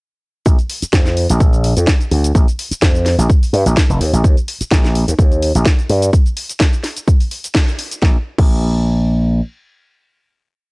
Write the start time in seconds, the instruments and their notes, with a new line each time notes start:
0.46 slap bass A#1, kick, closed hi-hat, shaker
0.59 closed hi-hat, shaker
0.69 open hi-hat
0.82 muted slap bass stroke, closed hi-hat, shaker
0.93 slap bass F2, kick, snare, closed hi-hat, shaker
1.06 snare, closed hi-hat, shaker
1.17 open hi-hat
1.30 slap bass A#1, closed hi-hat, shaker
1.40 kick, closed hi-hat, shaker
1.53 closed hi-hat, shaker
1.64 open hi-hat
1.77 slap bass F2, closed hi-hat, shaker
1.87 kick, snare, closed hi-hat, shaker
2.01 closed hi-hat, shaker
2.11 slap bass D2, open hi-hat
2.24 closed hi-hat, shaker
2.35 slap bass A#1, kick, closed hi-hat, shaker
2.48 closed hi-hat, shaker
2.59 open hi-hat
2.71 muted slap bass stroke, closed hi-hat, shaker
2.82 slap bass F2, kick, snare, closed hi-hat, shaker
2.95 closed hi-hat, shaker
3.06 snare, open hi-hat
3.18 slap bass A#1, closed hi-hat, shaker
3.30 kick, closed hi-hat, shaker
3.43 open hi-hat, shaker
3.53 slap bass G2, open hi-hat
3.66 slap bass A#1, closed hi-hat, shaker
3.77 kick, snare, closed hi-hat, shaker
3.90 slap bass F1, closed hi-hat, shaker
4.00 slap bass D#2, open hi-hat
4.13 slap bass A#1, closed hi-hat, shaker
4.24 slap bass D#2, kick, closed hi-hat, shaker
4.37 closed hi-hat, shaker
4.48 open hi-hat
4.61 muted slap bass stroke, closed hi-hat, shaker
4.71 slap bass A#1, kick, snare, closed hi-hat, shaker
4.84 snare, closed hi-hat, shaker
4.95 open hi-hat
5.08 slap bass D#2, closed hi-hat, shaker
5.19 slap bass D#2, kick, closed hi-hat, shaker
5.32 closed hi-hat, shaker
5.42 open hi-hat
5.55 slap bass A#1, closed hi-hat, shaker
5.65 kick, snare, closed hi-hat, shaker
5.79 closed hi-hat, shaker
5.89 slap bass G2, open hi-hat
6.02 closed hi-hat, shaker
6.13 kick, closed hi-hat, shaker
6.26 closed hi-hat, shaker
6.37 open hi-hat
6.49 closed hi-hat, shaker
6.60 kick, snare, closed hi-hat, shaker
6.73 closed hi-hat, shaker
6.83 snare, open hi-hat
6.96 closed hi-hat, shaker
7.08 kick, closed hi-hat, shaker
7.20 open hi-hat, shaker
7.31 open hi-hat
7.44 closed hi-hat, shaker
7.55 kick, snare, closed hi-hat, shaker
7.68 closed hi-hat, shaker
7.79 open hi-hat
7.91 closed hi-hat, shaker
8.02 slap bass A#1, kick, snare
8.38 slap bass A#1, kick, crash